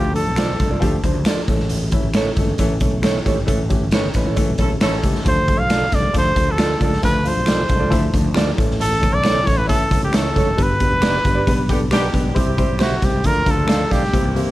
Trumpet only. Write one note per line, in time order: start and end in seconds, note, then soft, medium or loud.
0.00 0.15 G4 medium
0.16 1.00 A4 medium
5.28 5.60 C5 loud
5.59 5.96 F5 loud
5.94 6.16 D5 medium
6.18 6.53 C5 loud
6.51 6.83 A4 medium
6.84 7.03 A4 medium
7.04 7.29 B4 medium
7.28 8.16 C5 medium
8.81 9.15 A4 loud
9.14 9.48 D5 loud
9.46 9.59 C#5 medium
9.57 9.68 B4 medium
9.69 10.00 A4 loud
10.04 10.17 G4 medium
10.16 10.64 A4 medium
10.62 11.94 B4 loud
12.82 13.06 F#4 medium
13.05 13.28 G4 medium
13.26 13.52 A#4 loud
13.50 13.94 A4 medium
13.92 14.36 G4 medium